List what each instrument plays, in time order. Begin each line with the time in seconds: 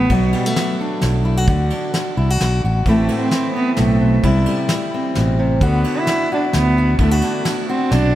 Already playing: steel-string acoustic guitar A2 G3 B3, cello B3
0.10 fingered electric bass B1, steel-string acoustic guitar B2 F#4, cello F#3, kick, ride
0.33 cello G3, steel-string acoustic guitar G3, ride
0.46 steel-string acoustic guitar A3
0.56 cello F#3, muted steel-string acoustic guitar stroke, snare, ride
0.81 steel-string acoustic guitar D4
1.01 fingered electric bass B1, muted steel-string acoustic guitar stroke, snare, ride
1.25 steel-string acoustic guitar E4
1.37 steel-string acoustic guitar F#4
1.48 fingered electric bass D2, steel-string acoustic guitar D3 F#4, kick, ride
1.70 steel-string acoustic guitar D4, ride
1.94 muted steel-string acoustic guitar stroke, snare, ride
2.17 fingered electric bass C2, steel-string acoustic guitar E4
2.30 steel-string acoustic guitar F#4
2.41 fingered electric bass B1, muted steel-string acoustic guitar stroke, snare, ride
2.64 fingered electric bass A1, steel-string acoustic guitar F#4
2.86 fingered electric bass A1, steel-string acoustic guitar A2 E3 A3 C4 E4, cello A3, kick, ride
3.09 steel-string acoustic guitar A3, ride
3.21 cello C4
3.31 muted steel-string acoustic guitar stroke, snare, ride
3.55 cello B3, steel-string acoustic guitar C4
3.77 fingered electric bass B1, steel-string acoustic guitar A2, cello A3, snare, ride
4.01 steel-string acoustic guitar B2
4.23 fingered electric bass C2, steel-string acoustic guitar C3 E4, cello G3, kick, ride
4.46 steel-string acoustic guitar G3, ride
4.69 muted steel-string acoustic guitar stroke, snare, ride
4.94 steel-string acoustic guitar C4
5.15 fingered electric bass A1, steel-string acoustic guitar B2, snare, ride
5.39 steel-string acoustic guitar C3
5.61 fingered electric bass D2, steel-string acoustic guitar D3 F#4, cello B3, kick, ride
5.84 steel-string acoustic guitar D4, ride
5.98 cello E4
6.07 muted steel-string acoustic guitar stroke, snare, ride
6.32 cello D4, steel-string acoustic guitar F#4
6.53 fingered electric bass D2, cello B3, muted steel-string acoustic guitar stroke, snare, ride
6.78 steel-string acoustic guitar F#4
6.99 fingered electric bass D2, steel-string acoustic guitar D3 E4, cello A3, kick, ride
7.11 steel-string acoustic guitar F#4
7.22 steel-string acoustic guitar D4, ride
7.45 muted steel-string acoustic guitar stroke, snare, ride
7.68 cello C4, steel-string acoustic guitar F#4
7.91 fingered electric bass B1, steel-string acoustic guitar C3, cello D4, snare, ride